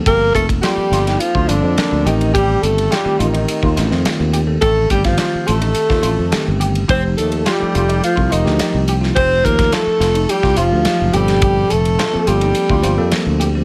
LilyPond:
<<
  \new Staff \with { instrumentName = "Alto saxophone" } { \time 4/4 \key g \minor \tempo 4 = 106 bes'8 a'8 g'4 f'8 d'4 ees'8 | g'8 a'8 g'8 ees'4. r4 | a'8 g'16 f'8. a'2 r8 | c''8 a'8 g'4 f'8 ees'4 r8 |
c''8 bes'8 a'4 g'8 f'4 g'8~ | g'8 a'4 g'2 r8 | }
  \new Staff \with { instrumentName = "Clean electric guitar" } { \time 4/4 \key g \minor g'8 r8 f'8 f'16 ees'8 f'16 f'8 r8 g'8 | g'8 r8 f'8 f'16 ees'8 f'16 f'8 r8 g'8 | g'8 r8 f'8 f'16 ees'8 f'16 f'8 r8 g'8 | g'8 r8 f'8 f'16 ees'8 f'16 f'8 r8 g'8 |
g'8 r8 f'8 f'16 ees'8 f'16 f'8 r8 g'8 | g'8 r8 f'8 f'16 ees'8 f'16 f'8 r8 g'8 | }
  \new Staff \with { instrumentName = "Tine electric piano" } { \time 4/4 \key g \minor <f bes c' a'>8 <f bes c' a'>4.~ <f bes c' a'>16 r16 <f bes c' d'>8 <f bes c' bes'>8 <ees a c' g'>8~ | <ees a c' g'>4 r16 <ees a c' g'>4 r16 <ees a c' d'>16 <ees a c' f'>4 <ees a c' a'>16~ | <ees a c' a'>8 <ees a c' g'>4.~ <ees a c' g'>16 r16 <ees a c' f'>8 <ees a c' g'>4 | <f a ees' g'>4 r16 <f a ees' a'>4 r16 <f a ees' g'>16 <f a ees' g'>4 <f a ees' f'>16~ |
<f a ees' f'>8 <f a ees' f'>4.~ <f a ees' f'>16 r16 <f a ees' g'>8 <f a ees' g'>8 <bes, f c' a'>8~ | <bes, f c' a'>4 r16 <f bes c' a'>4 r16 <f bes c' c''>16 <f bes c' a'>4 <f bes c' g'>16 | }
  \new Staff \with { instrumentName = "Tenor saxophone" } { \clef bass \time 4/4 \key g \minor bes8 a8 g4 f8 d4 ees8 | g8 a8 g8 ees4. r4 | a8 g16 f8. a2 r8 | c'8 a8 g4 f8 ees4 r8 |
c'8 bes8 a4 g8 f4 g8~ | g8 a4 g2 r8 | }
  \new Staff \with { instrumentName = "Fretless electric bass" } { \clef bass \time 4/4 \key g \minor g,,8 f,,8 r8 g,,8 r16 d,16 g,,16 f,16 r16 d,16 a,,8~ | a,,8 g,,8 r8 a,,8 r16 ees,16 a,,16 f,16 r16 ees,8. | a,,8 g,,8 r8 a,,8 r16 ees,16 a,,16 f,16 r16 g,,8. | f,,8 ees,8 r8 f,,8 r16 c,16 f,,16 d,16 r16 c,8. |
f,,8 ees,8 r8 f,,8 r16 c,16 f,,16 d,16 r16 fis,,16 g,,8~ | g,,8 f,,8 r8 g,,8 r16 d,16 g,,16 f,16 r16 d,8. | }
  \new DrumStaff \with { instrumentName = "Drums" } \drummode { \time 4/4 <hhp bd cymr>8 <hhp bd cymr>16 <bd cymr>16 <hhp cymr sn>8 <hhp cymr sn>16 <cymr sn>16 <hhp cymr>16 bd16 <hhp cymr>8 <hhp cymr sn>8 <hhp cymr>16 cymr16 | <hhp bd cymr>8 <hhp cymr>16 cymr16 <hhp cymr sn>8 <hhp cymr>16 cymr16 <hhp cymr>16 bd16 <hhp cymr sn>16 sn16 <hhp cymr sn>8 <hhp cymr>8 | <hhp bd cymr>8 <hhp bd cymr>16 <bd cymr sn>16 <hhp cymr sn>8 <hhp cymr>16 cymr16 <hhp cymr>16 <bd sn>16 <hhp cymr>8 <hhp cymr sn>8 <hhp cymr>16 cymr16 | <hhp bd cymr>8 <hhp cymr>16 cymr16 <hhp cymr sn>8 <hhp cymr>16 cymr16 <hhp cymr>16 bd16 <hhp cymr>16 sn16 <hhp cymr sn>8 <hhp cymr>16 sn16 |
<hhp bd cymr>8 <hhp bd cymr>16 <bd cymr sn>16 <hhp cymr sn>8 <hhp cymr sn>16 cymr16 <hhp cymr>16 <bd sn>16 <hhp cymr>8 <hhp cymr sn>8 <hhp cymr>16 <cymr sn>16 | <hhp bd cymr>8 <hhp cymr>16 cymr16 <hhp cymr sn>8 <hhp cymr>16 cymr16 <hhp cymr>16 bd16 <hhp cymr>8 <hhp cymr sn>8 <hhp cymr>8 | }
>>